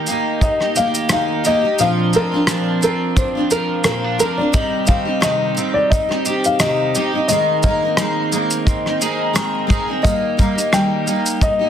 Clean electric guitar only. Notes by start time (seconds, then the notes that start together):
Already playing: D#4 G4
0.08 A#3
0.42 D#4
0.76 G4
1.11 D#4
1.45 G4
1.80 F3
2.14 C4
2.48 D4
2.83 C4
3.17 D4
3.52 A#4
3.86 C4
4.04 D4
4.20 A#4
4.55 G3
4.89 C4
5.24 D#4
5.58 C4
5.92 D#4
6.26 G4
6.60 D#4
6.96 G4
7.29 D#3
7.64 A#3
7.99 C4
8.33 A#3
8.67 C4
9.02 G#4
9.36 C4
9.70 G#4
10.04 A#3
10.39 A#3
10.72 D#4
11.07 A#3
11.41 D#4